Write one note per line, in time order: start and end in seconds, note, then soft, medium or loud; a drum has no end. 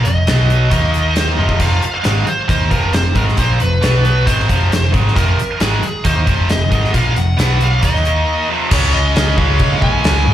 0.05 0.26 F1 medium
0.05 0.23 F2 medium
0.05 0.23 C3 medium
0.05 1.19 D#5 medium
0.05 closed hi-hat medium
0.27 0.69 B1 medium
0.27 0.71 B2 medium
0.27 0.71 F#3 medium
0.27 0.71 B3 loud
0.27 snare loud
0.27 closed hi-hat medium
0.50 closed hi-hat medium
0.71 1.35 D#2 medium
0.71 1.37 D#3 medium
0.71 1.37 A#3 medium
0.71 1.38 D#4 loud
0.71 kick medium
0.71 closed hi-hat medium
0.94 closed hi-hat medium
1.16 1.40 C5 medium
1.16 snare loud
1.16 closed hi-hat medium
1.37 1.59 F1 medium
1.37 1.58 F2 medium
1.37 1.58 C3 medium
1.37 1.59 F3 medium
1.37 1.61 D#5 medium
1.37 high tom medium
1.49 kick medium
1.59 1.81 F1 medium
1.59 1.80 F2 medium
1.59 1.82 C3 medium
1.59 1.82 F3 loud
1.59 1.92 F5 medium
1.59 kick medium
1.59 closed hi-hat medium
1.59 crash medium
1.82 muted distorted electric guitar stroke medium
1.82 closed hi-hat medium
1.94 2.28 F5 medium
2.04 2.26 G#1 medium
2.04 2.26 G#2 medium
2.04 2.26 D#3 medium
2.04 2.27 G#3 medium
2.04 snare loud
2.04 closed hi-hat medium
2.26 2.48 C5 medium
2.26 muted distorted electric guitar stroke medium
2.26 muted picked electric bass stroke soft
2.26 closed hi-hat medium
2.48 2.70 D#2 medium
2.48 2.70 D#3 medium
2.48 2.71 A#3 medium
2.48 2.71 D#4 loud
2.48 2.71 C5 medium
2.48 kick loud
2.48 closed hi-hat medium
2.70 2.92 F1 medium
2.70 2.91 F2 medium
2.70 2.92 C3 medium
2.70 2.93 F3 medium
2.70 2.92 A#4 medium
2.70 kick medium
2.70 closed hi-hat medium
2.93 3.15 F1 medium
2.93 3.11 F2 soft
2.93 3.11 C3 medium
2.93 3.17 C5 medium
2.93 snare loud
2.93 closed hi-hat medium
3.15 3.37 G#1 medium
3.15 3.37 G#2 medium
3.15 3.37 D#3 medium
3.15 3.37 G#3 medium
3.15 3.23 A#4 medium
3.15 kick medium
3.15 closed hi-hat medium
3.28 snare soft
3.37 3.59 A#1 medium
3.37 3.59 A#2 medium
3.37 3.60 F3 medium
3.37 3.60 A#3 medium
3.37 3.61 C5 medium
3.37 kick loud
3.37 closed hi-hat medium
3.60 3.81 F1 medium
3.60 3.78 F2 medium
3.60 3.78 C3 medium
3.60 4.02 B4 medium
3.60 closed hi-hat medium
3.81 4.24 B1 medium
3.81 4.26 B2 medium
3.81 4.26 F#3 medium
3.81 4.27 B3 medium
3.81 snare loud
3.81 closed hi-hat medium
4.05 4.26 B4 medium
4.05 closed hi-hat medium
4.26 4.48 G#1 medium
4.26 4.48 G#2 medium
4.26 4.48 D#3 loud
4.26 4.49 G#3 medium
4.26 4.90 C5 medium
4.26 kick medium
4.26 closed hi-hat medium
4.40 snare soft
4.48 4.70 F1 medium
4.48 4.69 F2 medium
4.48 4.70 C3 medium
4.48 4.71 F3 loud
4.48 kick medium
4.48 closed hi-hat medium
4.70 4.92 F1 medium
4.70 4.89 F2 medium
4.70 4.89 C3 medium
4.70 snare loud
4.70 closed hi-hat medium
4.92 5.15 G#1 medium
4.92 5.15 G#2 medium
4.92 5.15 D#3 medium
4.92 5.15 G#3 medium
4.92 kick medium
4.92 closed hi-hat medium
5.07 snare soft
5.15 5.37 F1 medium
5.15 5.37 F2 medium
5.15 5.38 C3 loud
5.15 5.38 F3 loud
5.15 5.58 A#4 medium
5.15 kick loud
5.15 closed hi-hat medium
5.38 muted distorted electric guitar stroke medium
5.38 muted picked electric bass stroke soft
5.38 closed hi-hat medium
5.60 5.81 G#1 medium
5.60 5.82 G#2 medium
5.60 5.83 D#3 medium
5.60 5.83 G#3 loud
5.60 6.05 G#4 medium
5.60 snare loud
5.60 closed hi-hat medium
5.83 muted distorted electric guitar stroke medium
5.83 muted picked electric bass stroke soft
5.83 closed hi-hat medium
6.05 6.26 D#2 medium
6.05 6.27 D#3 medium
6.05 6.27 A#3 medium
6.05 6.27 D#4 loud
6.05 6.51 C5 medium
6.05 kick loud
6.05 closed hi-hat medium
6.26 6.48 F1 medium
6.26 6.48 F2 medium
6.26 6.49 C3 loud
6.26 6.49 F3 loud
6.26 kick medium
6.26 closed hi-hat medium
6.49 6.70 F1 medium
6.49 6.67 F2 medium
6.49 6.67 C3 medium
6.49 6.95 D#5 loud
6.49 snare loud
6.49 closed hi-hat medium
6.71 6.93 G#1 medium
6.71 6.93 G#2 medium
6.71 6.92 D#3 medium
6.71 6.93 G#3 medium
6.71 kick medium
6.71 closed hi-hat medium
6.84 snare soft
6.92 7.15 A#1 medium
6.92 7.15 A#2 medium
6.92 7.15 F3 loud
6.92 7.15 A#3 loud
6.92 7.18 F5 loud
6.92 kick loud
6.92 closed hi-hat medium
7.15 7.37 F1 medium
7.15 7.33 F2 medium
7.15 7.34 C3 medium
7.15 7.63 F#5 loud
7.15 closed hi-hat medium
7.37 7.80 B1 loud
7.37 7.81 B2 medium
7.37 7.82 F#3 medium
7.37 7.82 B3 medium
7.37 snare loud
7.37 closed hi-hat medium
7.61 7.83 F5 loud
7.61 closed hi-hat medium
7.82 8.24 D#2 medium
7.82 8.48 D#3 medium
7.82 8.49 A#3 medium
7.82 8.49 D#4 loud
7.82 8.46 D#5 medium
7.82 kick medium
7.82 closed hi-hat medium
7.95 snare soft
8.05 closed hi-hat medium
8.49 8.70 F2 medium
8.49 8.69 C3 medium
8.49 8.71 F3 medium
8.70 8.92 C#2 medium
8.70 9.40 C#3 loud
8.70 9.39 G#3 medium
8.70 9.37 C#4 loud
8.70 8.93 C#5 medium
8.70 kick loud
8.70 crash loud
8.70 crash medium
8.94 9.14 C#2 medium
8.94 9.39 D#5 medium
9.16 9.36 C#2 medium
9.16 snare loud
9.16 crash medium
9.37 9.58 C#2 medium
9.37 10.34 C#3 medium
9.37 10.34 G#3 medium
9.37 10.34 C#4 medium
9.37 9.79 F5 loud
9.37 kick medium
9.59 9.80 C#3 medium
9.59 kick medium
9.59 crash medium
9.82 10.02 A#1 loud
9.82 10.34 G#5 loud
9.82 kick medium
10.04 10.25 C#2 loud
10.04 snare loud
10.04 crash medium
10.27 10.34 G#2 medium